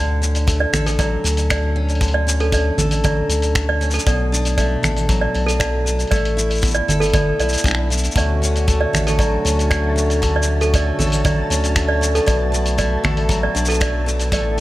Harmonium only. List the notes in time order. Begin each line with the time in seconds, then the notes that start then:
8.15 D3 A3 C#4 F#4
12.26 B3
14.31 E3 B3 A4